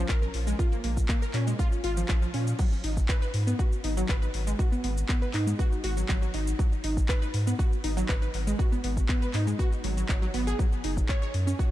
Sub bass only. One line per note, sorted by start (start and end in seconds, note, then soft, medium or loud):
0.09 0.29 A#1 medium
0.34 0.54 A#1 medium
0.84 1.04 A#1 loud
1.34 1.54 A#2 medium
1.84 2.04 G#1 loud
2.09 2.29 A#1 medium
2.34 2.54 A#2 medium
2.84 3.04 G#1 loud
3.34 3.54 G#2 medium
3.84 4.04 G#1 loud
4.09 4.29 G#1 medium
4.34 4.54 G#1 medium
4.84 5.04 G#1 loud
5.34 5.54 G#2 medium
5.84 6.04 G#1 loud
6.09 6.29 G#1 medium
6.34 6.54 G#1 medium
6.84 7.04 G#1 loud
7.34 7.54 G#2 medium
7.84 8.04 G#1 loud
8.09 8.29 G#1 medium
8.34 8.54 G#1 medium
8.84 9.04 G#1 loud
9.34 9.54 G#2 medium
9.84 10.04 G#1 loud
10.09 10.29 G#1 medium
10.34 10.54 G#1 medium
10.84 11.04 F#1 loud
11.34 11.54 F#2 medium